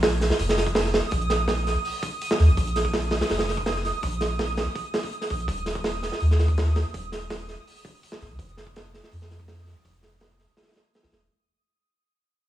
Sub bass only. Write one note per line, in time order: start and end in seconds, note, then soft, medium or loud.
0.00 0.29 A#1 loud
0.39 1.02 F1 medium
1.12 1.74 A#1 loud
2.39 2.50 D#2 medium
2.48 2.57 G#1 medium
2.57 3.20 A#1 loud
3.30 3.92 F1 medium
4.03 4.65 A#1 loud
5.30 5.47 A#1 medium
5.48 6.10 D#1 medium
6.21 6.83 D#2 medium
6.94 7.56 D#1 loud
8.21 8.32 G#1 medium
8.30 8.38 C#2 medium
8.39 9.01 F1 loud
9.12 9.74 F2 medium
9.85 10.47 F1 loud
11.03 11.11 A1 medium
11.12 11.28 D#1 medium